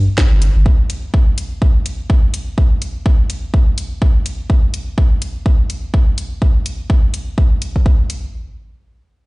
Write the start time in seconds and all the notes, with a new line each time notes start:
0.18 kick, snare
0.32 G1
0.42 closed hi-hat
0.56 G1
0.66 kick
0.90 closed hi-hat
1.14 kick
1.38 closed hi-hat
1.62 kick
1.86 closed hi-hat
2.10 kick
2.34 closed hi-hat
2.58 kick
2.82 closed hi-hat
3.06 kick
3.30 closed hi-hat
3.54 kick
3.78 closed hi-hat
4.02 kick
4.26 closed hi-hat
4.50 kick
4.74 closed hi-hat
4.98 kick
5.22 closed hi-hat
5.46 kick
5.70 closed hi-hat
5.94 kick
6.18 closed hi-hat
6.42 kick
6.66 closed hi-hat
6.90 kick
7.14 closed hi-hat
7.38 kick
7.62 closed hi-hat
7.76 kick
7.86 kick
8.10 closed hi-hat